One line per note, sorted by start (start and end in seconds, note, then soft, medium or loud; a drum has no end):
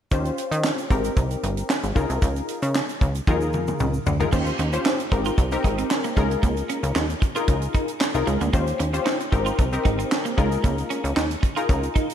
0.11 0.31 D#2 loud
0.11 0.86 C#4 medium
0.11 0.86 F4 medium
0.11 0.86 G4 medium
0.11 0.87 C5 medium
0.11 kick loud
0.11 closed hi-hat medium
0.11 shaker medium
0.25 closed hi-hat soft
0.25 shaker soft
0.38 closed hi-hat medium
0.38 shaker medium
0.52 0.71 D#3 loud
0.52 closed hi-hat medium
0.52 shaker soft
0.64 snare loud
0.64 clap medium
0.64 shaker medium
0.78 closed hi-hat medium
0.78 shaker soft
0.90 1.10 G#1 medium
0.90 1.75 C4 medium
0.90 1.75 D#4 medium
0.90 1.75 G4 medium
0.90 1.75 A#4 medium
0.90 kick loud
0.90 closed hi-hat medium
0.90 shaker soft
1.04 closed hi-hat soft
1.04 shaker medium
1.17 1.36 C2 medium
1.17 kick loud
1.17 closed hi-hat medium
1.17 shaker medium
1.31 closed hi-hat soft
1.31 shaker soft
1.43 1.63 G1 loud
1.43 closed hi-hat medium
1.43 shaker soft
1.57 closed hi-hat medium
1.57 shaker medium
1.70 snare loud
1.70 clap medium
1.70 shaker medium
1.83 1.93 G#1 medium
1.83 closed hi-hat soft
1.83 shaker medium
1.95 2.06 C#2 loud
1.95 2.80 D#4 medium
1.95 2.80 F4 medium
1.95 2.80 G#4 medium
1.95 2.80 A#4 loud
1.95 kick medium
1.95 closed hi-hat soft
1.95 shaker medium
2.10 2.19 C2 medium
2.10 closed hi-hat soft
2.10 shaker soft
2.22 2.42 C#2 loud
2.22 kick loud
2.22 closed hi-hat medium
2.22 shaker medium
2.36 closed hi-hat soft
2.36 shaker soft
2.48 closed hi-hat medium
2.48 shaker medium
2.62 2.82 C#3 loud
2.62 closed hi-hat medium
2.62 shaker soft
2.75 snare loud
2.75 clap medium
2.75 shaker medium
2.89 closed hi-hat medium
2.89 shaker soft
3.01 3.21 C#2 loud
3.01 kick loud
3.01 closed hi-hat medium
3.01 shaker soft
3.15 closed hi-hat soft
3.15 shaker medium
3.27 3.55 D#2 loud
3.27 3.93 D#4 loud
3.27 3.93 F4 medium
3.27 3.93 G#4 medium
3.27 3.94 A#4 loud
3.27 kick loud
3.27 high tom soft
3.27 shaker medium
3.41 shaker medium
3.53 3.73 F2 medium
3.53 mid tom medium
3.53 shaker soft
3.67 mid tom medium
3.67 shaker medium
3.79 4.00 C#2 loud
3.79 mid tom medium
3.79 shaker medium
3.94 shaker medium
4.06 4.26 D2 loud
4.06 floor tom medium
4.06 shaker medium
4.20 4.29 D#4 medium
4.20 4.29 F4 medium
4.20 4.29 G#4 medium
4.20 4.29 A#4 loud
4.20 floor tom medium
4.20 shaker soft
4.32 4.52 D#2 loud
4.32 4.42 A#3 medium
4.32 4.60 C#4 medium
4.32 4.60 F4 medium
4.32 4.61 G4 medium
4.32 4.61 C5 medium
4.32 kick loud
4.32 crash loud
4.32 shaker medium
4.46 closed hi-hat soft
4.46 shaker medium
4.59 4.78 D#2 loud
4.59 4.69 C#4 medium
4.59 closed hi-hat medium
4.59 shaker medium
4.73 5.00 C#4 medium
4.73 5.01 F4 medium
4.73 5.01 G4 medium
4.73 5.01 C5 medium
4.73 muted clean electric guitar stroke soft
4.73 closed hi-hat medium
4.73 shaker medium
4.85 4.95 D#4 medium
4.85 snare loud
4.85 clap medium
4.85 shaker medium
4.99 closed hi-hat medium
4.99 shaker soft
5.11 5.31 G#1 loud
5.11 5.43 C4 medium
5.11 5.43 D#4 medium
5.11 5.44 G4 medium
5.11 5.44 A#4 medium
5.11 muted clean electric guitar stroke soft
5.11 kick medium
5.11 closed hi-hat medium
5.11 shaker soft
5.25 5.34 F4 medium
5.25 closed hi-hat soft
5.25 shaker medium
5.38 5.57 C2 loud
5.38 muted clean electric guitar stroke soft
5.38 kick loud
5.38 closed hi-hat medium
5.38 shaker medium
5.52 6.17 C4 medium
5.52 6.15 D#4 medium
5.52 6.17 G4 medium
5.52 6.16 A#4 loud
5.52 closed hi-hat medium
5.52 shaker soft
5.64 5.84 G#1 medium
5.64 5.74 D#4 medium
5.64 kick medium
5.64 closed hi-hat medium
5.64 shaker soft
5.78 5.87 C4 medium
5.78 closed hi-hat medium
5.78 shaker medium
5.91 muted clean electric guitar stroke soft
5.91 snare loud
5.91 clap medium
5.91 shaker medium
6.04 6.13 A#3 medium
6.04 closed hi-hat soft
6.04 shaker medium
6.16 6.37 C#2 loud
6.16 6.27 G#3 medium
6.16 7.01 D#4 medium
6.16 7.01 F4 medium
6.16 7.01 G#4 medium
6.16 7.02 A#4 loud
6.16 kick medium
6.16 closed hi-hat medium
6.16 shaker medium
6.31 closed hi-hat soft
6.31 shaker soft
6.43 6.63 C#2 loud
6.43 6.53 A#3 medium
6.43 kick loud
6.43 closed hi-hat medium
6.43 shaker medium
6.57 closed hi-hat soft
6.57 shaker soft
6.69 6.79 C#4 medium
6.69 closed hi-hat medium
6.69 shaker medium
6.83 6.92 C#2 loud
6.83 muted clean electric guitar stroke soft
6.83 closed hi-hat medium
6.83 shaker medium
6.95 7.15 D#2 loud
6.95 7.06 D#4 medium
6.95 snare loud
6.95 clap medium
6.95 shaker medium
7.10 closed hi-hat medium
7.10 shaker soft
7.22 muted clean electric guitar stroke soft
7.22 kick loud
7.22 closed hi-hat medium
7.22 shaker soft
7.35 7.91 D#4 medium
7.35 7.91 F4 medium
7.35 7.45 F4 medium
7.35 7.92 G#4 medium
7.35 7.92 A#4 loud
7.35 closed hi-hat soft
7.35 shaker medium
7.48 7.68 C#2 medium
7.48 kick loud
7.48 closed hi-hat medium
7.48 shaker medium
7.62 closed hi-hat medium
7.62 shaker soft
7.74 7.84 D#4 medium
7.74 kick medium
7.74 closed hi-hat medium
7.74 shaker soft
7.88 closed hi-hat medium
7.88 shaker medium
8.01 muted clean electric guitar stroke soft
8.01 snare loud
8.01 clap medium
8.01 shaker medium
8.14 8.24 C2 medium
8.14 8.42 D#4 loud
8.14 8.43 F4 medium
8.14 8.43 G#4 medium
8.14 8.43 A#4 loud
8.14 closed hi-hat soft
8.14 shaker medium
8.27 8.38 C#2 loud
8.27 8.37 G#3 medium
8.27 closed hi-hat medium
8.27 shaker medium
8.41 8.50 D2 medium
8.41 8.50 A#3 medium
8.41 closed hi-hat soft
8.41 shaker soft
8.53 8.73 D#2 loud
8.53 8.63 A#3 medium
8.53 8.81 C#4 medium
8.53 8.81 F4 medium
8.53 8.81 G4 medium
8.53 8.82 C5 medium
8.53 kick loud
8.53 closed hi-hat medium
8.53 shaker medium
8.67 closed hi-hat medium
8.67 shaker medium
8.79 8.99 D#2 medium
8.79 8.89 C#4 medium
8.79 closed hi-hat medium
8.79 shaker medium
8.93 9.21 C#4 medium
8.93 9.21 F4 medium
8.93 9.21 G4 medium
8.93 9.22 C5 loud
8.93 muted clean electric guitar stroke soft
8.93 closed hi-hat medium
8.93 shaker medium
9.05 9.16 D#4 medium
9.05 snare loud
9.05 clap medium
9.05 shaker medium
9.20 closed hi-hat medium
9.20 shaker soft
9.32 9.52 G#1 loud
9.32 9.64 C4 medium
9.32 9.64 D#4 medium
9.32 9.64 G4 medium
9.32 9.64 A#4 loud
9.32 muted clean electric guitar stroke soft
9.32 kick loud
9.32 closed hi-hat medium
9.32 shaker soft
9.46 9.55 F4 medium
9.46 closed hi-hat soft
9.46 shaker medium
9.59 9.79 C2 medium
9.59 muted clean electric guitar stroke soft
9.59 kick loud
9.59 closed hi-hat medium
9.59 shaker medium
9.72 10.38 C4 medium
9.72 10.36 D#4 medium
9.72 10.38 G4 medium
9.72 10.37 A#4 medium
9.72 closed hi-hat soft
9.72 shaker soft
9.85 10.05 G#1 medium
9.85 9.95 D#4 medium
9.85 kick medium
9.85 closed hi-hat medium
9.85 shaker soft
9.99 10.08 C4 medium
9.99 closed hi-hat medium
9.99 shaker medium
10.11 muted clean electric guitar stroke soft
10.11 snare loud
10.11 clap medium
10.11 shaker medium
10.25 10.34 A#3 medium
10.25 closed hi-hat medium
10.25 shaker medium
10.37 10.58 C#2 loud
10.37 10.48 G#3 medium
10.37 11.22 D#4 loud
10.37 11.22 F4 medium
10.37 11.22 G#4 medium
10.37 11.22 A#4 loud
10.37 kick medium
10.37 closed hi-hat medium
10.37 shaker medium
10.52 closed hi-hat soft
10.52 shaker medium
10.64 10.84 C#2 loud
10.64 10.74 A#3 medium
10.64 kick loud
10.64 closed hi-hat medium
10.64 shaker medium
10.78 closed hi-hat soft
10.78 shaker soft
10.90 11.00 C#4 loud
10.90 closed hi-hat medium
10.90 shaker medium
11.04 11.13 C#2 loud
11.04 muted clean electric guitar stroke soft
11.04 closed hi-hat medium
11.04 shaker medium
11.16 11.36 D#2 loud
11.16 11.26 D#4 medium
11.16 snare loud
11.16 clap medium
11.16 shaker medium
11.31 closed hi-hat medium
11.31 shaker soft
11.43 muted clean electric guitar stroke soft
11.43 kick loud
11.43 closed hi-hat medium
11.43 shaker soft
11.56 12.12 D#4 medium
11.56 11.65 F4 medium
11.56 12.12 F4 medium
11.56 12.13 G#4 medium
11.56 12.13 A#4 loud
11.56 closed hi-hat medium
11.56 shaker medium
11.69 11.89 C#2 loud
11.69 kick loud
11.69 closed hi-hat medium
11.69 shaker medium
11.83 closed hi-hat soft
11.83 shaker soft
11.95 12.05 D#4 medium
11.95 kick medium
11.95 closed hi-hat medium
11.95 shaker soft
12.10 closed hi-hat medium
12.10 shaker medium